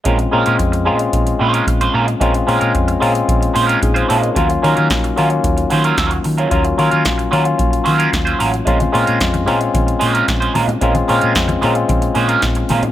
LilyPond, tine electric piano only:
\new Staff \with { instrumentName = "Tine electric piano" } { \time 4/4 \key bes \minor \tempo 4 = 112 << { r1 | r2. <ees' aes'>16 <f' c''>16 <aes' des''>16 <f' bes'>16~ | <f' bes'>16 r2. r8. | r1 |
r1 | r1 | } \\ { <aes c' des' f'>8 <aes c' des' f'>8 r8 <aes c' des' f'>4. r4 | <aes c' des' f'>8 <aes c' des' f'>8 r8 <aes c' des' f'>4. r4 | <ges bes des' f'>8 <ges bes des' ees'>8 r8 <ges bes des' f'>4. r4 | <ges bes des' f'>8 <ges bes des' f'>8 r8 <ges bes des' f'>4. r4 |
<aes c' des' f'>8 <aes c' des' f'>8 r8 <aes c' des' f'>4. r4 | <aes c' des' f'>8 <aes c' des' f'>8 r8 <aes c' des' f'>4. r4 | } >> }